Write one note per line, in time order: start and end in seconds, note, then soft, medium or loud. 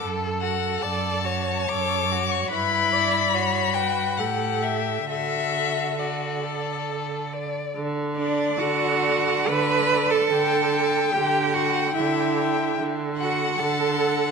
0.02 0.73 F#2 medium
0.02 0.44 A4 medium
0.02 0.84 A4 medium
0.41 0.83 F#4 soft
0.41 0.83 F#5 medium
0.82 1.60 F#2 medium
0.82 1.26 A4 medium
0.82 1.27 D5 medium
0.82 1.70 A5 medium
1.24 1.69 F#4 soft
1.24 2.51 C#5 medium
1.69 2.42 F#2 medium
1.69 2.13 A4 medium
1.69 2.32 D6 medium
2.12 2.52 F#4 soft
2.31 2.49 C#6 medium
2.50 4.18 G2 medium
2.50 3.36 E4 medium
2.50 2.94 B4 medium
2.50 3.75 B5 loud
2.93 3.35 D5 medium
3.33 4.21 F#4 medium
3.33 3.77 C#5 medium
3.74 4.21 B4 medium
3.74 4.19 G5 medium
4.17 5.08 A2 medium
4.17 5.09 G4 soft
4.17 5.10 A4 medium
4.17 4.64 F#5 medium
4.62 5.09 E5 medium
5.08 7.52 D3 medium
5.08 5.98 F#4 medium
5.08 7.31 A4 soft
5.08 6.00 E5 medium
5.99 6.45 F#4 soft
5.99 7.33 D5 medium
6.44 7.35 A4 soft
7.33 7.77 D5 soft
7.77 8.50 D3 medium
8.17 8.60 D4 medium
8.17 9.02 D5 medium
8.17 8.62 D5 medium
8.58 9.38 D3 medium
8.58 9.49 F#4 medium
8.58 9.50 F#5 medium
9.04 9.89 D5 medium
9.48 10.22 D3 medium
9.48 10.12 B4 loud
9.48 10.12 B5 medium
9.91 10.31 D5 medium
10.10 11.14 A4 medium
10.10 11.15 A5 medium
10.32 11.04 D3 medium
10.32 10.72 G5 medium
10.73 11.54 G5 medium
11.12 11.87 D3 medium
11.12 11.55 G4 medium
11.12 11.55 G5 medium
11.53 11.95 F#4 medium
11.53 11.95 F#5 medium
11.53 12.36 G5 medium
11.95 12.70 D3 medium
11.95 12.77 E4 medium
11.95 12.77 E5 medium
12.38 12.78 G5 medium
12.79 13.50 D3 medium
13.17 13.60 F#4 medium
13.17 13.59 F#5 medium
13.17 13.95 F#5 medium
13.58 14.28 D3 medium
13.58 14.31 A4 medium
13.58 14.31 A5 medium
13.97 14.31 F#5 medium